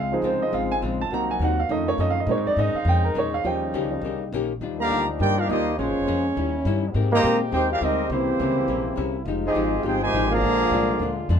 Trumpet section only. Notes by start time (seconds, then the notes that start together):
4.80 G4 D5 F5 A#5
5.21 F4 A#4 D5 G5
5.40 D4 G4 A#4 F5
5.50 A#3 F4 G4 D#5
5.79 G#3 F4 C5 C#5
7.15 G4 C5 D#5 A#5
7.53 D#4 A#4 C5 G5
7.72 D4 G4 A#4 F5
7.83 C4 G4 A#4 D#5
8.12 A#3 E4 G4 C5
9.46 C4 G4 G#4 D#5
9.88 D#4 G#4 C5 G5
10.03 D#4 G4 C5 G#5
10.32 G#4 D5 F5 A#5